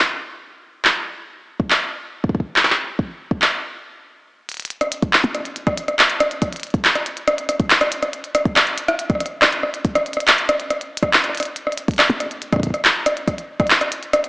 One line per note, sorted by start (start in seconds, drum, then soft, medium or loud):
0.85 clap loud
1.60 kick loud
1.70 clap loud
2.24 kick loud
2.29 kick medium
2.35 kick medium
2.40 kick medium
2.56 clap loud
2.63 clap medium
2.70 clap medium
2.99 kick medium
3.31 kick loud
3.42 clap loud
4.49 closed hi-hat medium
4.52 closed hi-hat soft
4.54 closed hi-hat soft
4.57 closed hi-hat soft
4.60 closed hi-hat medium
4.62 closed hi-hat soft
4.65 closed hi-hat medium
4.68 closed hi-hat soft
4.70 closed hi-hat medium
4.81 cross-stick medium
4.81 closed hi-hat soft
4.92 closed hi-hat medium
5.02 kick loud
5.02 closed hi-hat soft
5.13 clap loud
5.24 closed hi-hat soft
5.24 percussion blips medium
5.35 cross-stick medium
5.35 closed hi-hat loud
5.45 closed hi-hat soft
5.56 closed hi-hat medium
5.67 kick loud
5.67 cross-stick medium
5.67 closed hi-hat soft
5.77 closed hi-hat loud
5.88 cross-stick medium
5.88 closed hi-hat soft
5.99 clap loud
5.99 closed hi-hat medium
6.10 closed hi-hat soft
6.20 cross-stick medium
6.20 closed hi-hat loud
6.31 closed hi-hat soft
6.42 kick medium
6.42 cross-stick medium
6.42 closed hi-hat medium
6.53 closed hi-hat soft
6.56 closed hi-hat soft
6.60 closed hi-hat soft
6.63 closed hi-hat medium
6.67 closed hi-hat soft
6.70 kick loud
6.70 closed hi-hat soft
6.74 closed hi-hat soft
6.85 clap loud
6.85 closed hi-hat medium
6.95 cross-stick medium
6.95 closed hi-hat soft
7.06 closed hi-hat medium
7.17 closed hi-hat soft
7.28 cross-stick medium
7.28 closed hi-hat medium
7.38 closed hi-hat soft
7.49 cross-stick medium
7.49 closed hi-hat loud
7.60 kick medium
7.60 closed hi-hat soft
7.70 clap loud
7.70 closed hi-hat medium
7.81 cross-stick medium
7.81 closed hi-hat soft
7.92 closed hi-hat loud
8.03 cross-stick medium
8.03 closed hi-hat soft
8.13 closed hi-hat medium
8.24 closed hi-hat soft
8.35 cross-stick medium
8.35 closed hi-hat medium
8.45 kick loud
8.45 closed hi-hat soft
8.56 cross-stick medium
8.56 clap loud
8.56 closed hi-hat medium
8.67 closed hi-hat soft
8.78 closed hi-hat loud
8.88 cross-stick medium
8.88 closed hi-hat soft
8.99 closed hi-hat medium
9.10 kick loud
9.10 cross-stick soft
9.10 closed hi-hat soft
9.15 cross-stick soft
9.20 cross-stick soft
9.20 closed hi-hat loud
9.26 cross-stick soft
9.26 closed hi-hat soft
9.42 cross-stick medium
9.42 clap loud
9.42 closed hi-hat medium
9.53 closed hi-hat soft
9.63 cross-stick medium
9.74 closed hi-hat soft
9.85 kick medium
9.85 closed hi-hat medium
9.95 cross-stick medium
9.95 closed hi-hat soft
10.06 closed hi-hat soft
10.13 cross-stick soft
10.13 closed hi-hat medium
10.20 closed hi-hat medium
10.28 clap loud
10.28 closed hi-hat medium
10.38 closed hi-hat soft
10.49 cross-stick medium
10.49 closed hi-hat medium
10.60 closed hi-hat soft
10.70 cross-stick medium
10.70 closed hi-hat medium
10.81 closed hi-hat soft
10.97 closed hi-hat medium
11.03 kick medium
11.03 cross-stick medium
11.03 closed hi-hat soft
11.13 clap loud
11.13 closed hi-hat medium
11.24 cross-stick soft
11.24 closed hi-hat soft
11.29 cross-stick soft
11.35 closed hi-hat soft
11.37 cross-stick soft
11.37 closed hi-hat medium
11.40 closed hi-hat medium
11.43 closed hi-hat medium
11.45 closed hi-hat soft
11.56 closed hi-hat medium
11.67 cross-stick soft
11.72 closed hi-hat soft
11.77 closed hi-hat medium
11.88 kick loud
11.88 closed hi-hat soft
11.91 closed hi-hat soft
11.94 closed hi-hat soft
11.96 cross-stick medium
11.96 clap loud
11.96 closed hi-hat soft
11.99 closed hi-hat medium
12.10 closed hi-hat soft
12.10 percussion blips medium
12.20 cross-stick soft
12.20 closed hi-hat medium
12.31 closed hi-hat soft
12.42 closed hi-hat medium
12.53 kick loud
12.53 cross-stick medium
12.53 closed hi-hat soft
12.56 kick medium
12.60 kick medium
12.60 closed hi-hat medium
12.63 kick medium
12.67 kick soft
12.70 kick soft
12.70 cross-stick soft
12.70 closed hi-hat soft
12.85 clap loud
12.85 closed hi-hat medium
13.06 cross-stick medium
13.06 closed hi-hat medium
13.17 closed hi-hat soft
13.28 kick medium
13.28 cross-stick medium
13.28 closed hi-hat medium
13.38 closed hi-hat soft
13.60 kick loud
13.60 cross-stick medium
13.60 closed hi-hat soft
13.67 clap loud
13.67 closed hi-hat soft
13.70 closed hi-hat medium
13.74 closed hi-hat soft
13.81 cross-stick medium
13.81 closed hi-hat soft
13.92 closed hi-hat medium
14.03 closed hi-hat soft
14.13 cross-stick medium
14.13 closed hi-hat medium
14.24 closed hi-hat soft